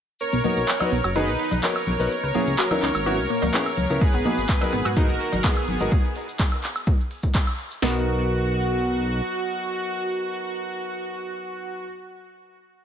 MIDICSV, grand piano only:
0, 0, Header, 1, 2, 480
1, 0, Start_track
1, 0, Key_signature, 5, "major"
1, 0, Tempo, 476190
1, 207, Time_signature, 4, 2, 24, 8
1, 12951, End_track
2, 0, Start_track
2, 0, Title_t, "Grand piano"
2, 0, Program_c, 0, 0
2, 445, Note_on_c, 0, 59, 82
2, 445, Note_on_c, 0, 63, 73
2, 445, Note_on_c, 0, 66, 73
2, 446, Note_on_c, 0, 70, 90
2, 597, Note_off_c, 0, 59, 0
2, 597, Note_off_c, 0, 63, 0
2, 597, Note_off_c, 0, 66, 0
2, 597, Note_off_c, 0, 70, 0
2, 811, Note_on_c, 0, 59, 86
2, 811, Note_on_c, 0, 63, 84
2, 811, Note_on_c, 0, 66, 80
2, 811, Note_on_c, 0, 71, 95
2, 899, Note_off_c, 0, 59, 0
2, 899, Note_off_c, 0, 63, 0
2, 899, Note_off_c, 0, 66, 0
2, 899, Note_off_c, 0, 71, 0
2, 1166, Note_on_c, 0, 59, 83
2, 1166, Note_on_c, 0, 63, 77
2, 1166, Note_on_c, 0, 66, 78
2, 1166, Note_on_c, 0, 68, 88
2, 1262, Note_off_c, 0, 59, 0
2, 1262, Note_off_c, 0, 63, 0
2, 1262, Note_off_c, 0, 66, 0
2, 1262, Note_off_c, 0, 68, 0
2, 1646, Note_on_c, 0, 59, 85
2, 1646, Note_on_c, 0, 63, 81
2, 1646, Note_on_c, 0, 66, 79
2, 1646, Note_on_c, 0, 70, 95
2, 1742, Note_off_c, 0, 59, 0
2, 1742, Note_off_c, 0, 63, 0
2, 1742, Note_off_c, 0, 66, 0
2, 1742, Note_off_c, 0, 70, 0
2, 2011, Note_on_c, 0, 66, 74
2, 2011, Note_on_c, 0, 71, 97
2, 2012, Note_on_c, 0, 59, 85
2, 2012, Note_on_c, 0, 63, 77
2, 2099, Note_off_c, 0, 59, 0
2, 2099, Note_off_c, 0, 63, 0
2, 2099, Note_off_c, 0, 66, 0
2, 2099, Note_off_c, 0, 71, 0
2, 2366, Note_on_c, 0, 59, 80
2, 2366, Note_on_c, 0, 61, 72
2, 2366, Note_on_c, 0, 64, 70
2, 2366, Note_on_c, 0, 68, 89
2, 2517, Note_off_c, 0, 59, 0
2, 2517, Note_off_c, 0, 61, 0
2, 2517, Note_off_c, 0, 64, 0
2, 2517, Note_off_c, 0, 68, 0
2, 2732, Note_on_c, 0, 59, 84
2, 2732, Note_on_c, 0, 61, 79
2, 2732, Note_on_c, 0, 64, 85
2, 2732, Note_on_c, 0, 70, 101
2, 2819, Note_off_c, 0, 59, 0
2, 2819, Note_off_c, 0, 61, 0
2, 2819, Note_off_c, 0, 64, 0
2, 2819, Note_off_c, 0, 70, 0
2, 3086, Note_on_c, 0, 59, 84
2, 3086, Note_on_c, 0, 61, 75
2, 3086, Note_on_c, 0, 64, 76
2, 3086, Note_on_c, 0, 66, 90
2, 3182, Note_off_c, 0, 59, 0
2, 3182, Note_off_c, 0, 61, 0
2, 3182, Note_off_c, 0, 64, 0
2, 3182, Note_off_c, 0, 66, 0
2, 3566, Note_on_c, 0, 59, 88
2, 3566, Note_on_c, 0, 61, 84
2, 3566, Note_on_c, 0, 64, 84
2, 3566, Note_on_c, 0, 68, 92
2, 3662, Note_off_c, 0, 59, 0
2, 3662, Note_off_c, 0, 61, 0
2, 3662, Note_off_c, 0, 64, 0
2, 3662, Note_off_c, 0, 68, 0
2, 3932, Note_on_c, 0, 59, 87
2, 3932, Note_on_c, 0, 61, 76
2, 3932, Note_on_c, 0, 64, 80
2, 3932, Note_on_c, 0, 70, 94
2, 4019, Note_off_c, 0, 59, 0
2, 4019, Note_off_c, 0, 61, 0
2, 4019, Note_off_c, 0, 64, 0
2, 4019, Note_off_c, 0, 70, 0
2, 4286, Note_on_c, 0, 59, 80
2, 4286, Note_on_c, 0, 63, 73
2, 4286, Note_on_c, 0, 66, 73
2, 4286, Note_on_c, 0, 68, 89
2, 4437, Note_off_c, 0, 59, 0
2, 4437, Note_off_c, 0, 63, 0
2, 4437, Note_off_c, 0, 66, 0
2, 4437, Note_off_c, 0, 68, 0
2, 4651, Note_on_c, 0, 59, 91
2, 4651, Note_on_c, 0, 66, 81
2, 4651, Note_on_c, 0, 70, 105
2, 4652, Note_on_c, 0, 63, 81
2, 4739, Note_off_c, 0, 59, 0
2, 4739, Note_off_c, 0, 63, 0
2, 4739, Note_off_c, 0, 66, 0
2, 4739, Note_off_c, 0, 70, 0
2, 5006, Note_on_c, 0, 59, 88
2, 5006, Note_on_c, 0, 63, 80
2, 5006, Note_on_c, 0, 66, 82
2, 5006, Note_on_c, 0, 68, 97
2, 5102, Note_off_c, 0, 59, 0
2, 5102, Note_off_c, 0, 63, 0
2, 5102, Note_off_c, 0, 66, 0
2, 5102, Note_off_c, 0, 68, 0
2, 5486, Note_on_c, 0, 59, 88
2, 5486, Note_on_c, 0, 63, 79
2, 5486, Note_on_c, 0, 66, 80
2, 5486, Note_on_c, 0, 68, 95
2, 5582, Note_off_c, 0, 59, 0
2, 5582, Note_off_c, 0, 63, 0
2, 5582, Note_off_c, 0, 66, 0
2, 5582, Note_off_c, 0, 68, 0
2, 5851, Note_on_c, 0, 59, 90
2, 5851, Note_on_c, 0, 63, 77
2, 5851, Note_on_c, 0, 66, 78
2, 5851, Note_on_c, 0, 70, 97
2, 5939, Note_off_c, 0, 59, 0
2, 5939, Note_off_c, 0, 63, 0
2, 5939, Note_off_c, 0, 66, 0
2, 5939, Note_off_c, 0, 70, 0
2, 7886, Note_on_c, 0, 59, 87
2, 7886, Note_on_c, 0, 63, 76
2, 7886, Note_on_c, 0, 66, 80
2, 7886, Note_on_c, 0, 70, 94
2, 11939, Note_off_c, 0, 59, 0
2, 11939, Note_off_c, 0, 63, 0
2, 11939, Note_off_c, 0, 66, 0
2, 11939, Note_off_c, 0, 70, 0
2, 12951, End_track
0, 0, End_of_file